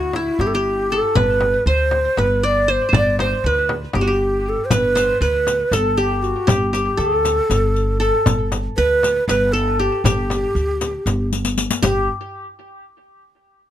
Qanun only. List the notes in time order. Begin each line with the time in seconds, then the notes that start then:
Already playing: E4 F#4
0.16 E4
0.41 G4
0.55 G4
0.92 A4
1.15 B4
1.67 C5
2.18 B4
2.43 D5
2.68 C5
2.89 C5
2.94 D5
3.20 C5
3.46 B4
3.95 G4
4.01 F#4
4.07 G4
4.71 B4
4.95 C5
5.22 B4
5.73 A4
5.97 G4
6.47 G4
6.73 G4
6.97 A4
8.00 A4
8.78 B4
9.29 B4
9.53 A4
9.79 G4
10.05 G4
11.82 G4